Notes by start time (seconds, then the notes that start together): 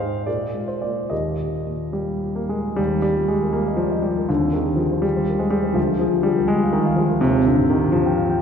Already playing: G#2 G#3 D#5 F5
0.00 D#4 G#4 C5
0.26 A#2 G#4 A#4 D5
0.54 G#3
0.68 C5
0.82 A#3 F4 D5
1.10 D#2 G4 A#4 D#5
1.38 A#2
1.66 A#3
1.93 G3
2.23 A#2
2.36 A#3
2.49 G#3 A#3
2.76 D#2 G3
2.91 D#4
3.02 G3 G4
3.16 F4
3.28 G#3 G4
3.42 A#4
3.53 A#3 G4
3.67 D#5
3.76 F3 D5
3.91 D#5
4.02 G3 G4
4.17 A#4
4.29 D#2 D3
4.41 C4
4.53 D#3 G#4
4.66 G4
4.76 F3 G#4
4.92 C5
5.02 G3 G#4
5.16 C5
5.29 A#4
5.39 G#3 C5
5.50 G3 G#4
5.63 C5
5.74 D2 F3
5.87 F4
5.99 F3 G#4
6.13 G4
6.23 G3 G#4
6.37 A#4
6.48 G#3 G#4
6.63 F5
6.73 D#3 D#5
6.85 F5
6.96 F3 G#4
7.09 A#4
7.21 D#2 C3
7.36 G4
7.46 A#2 D3
7.59 G#2
7.70 D#3 G4
7.82 A#4
7.92 F3 G4
8.06 G5
8.18 F5
8.30 G5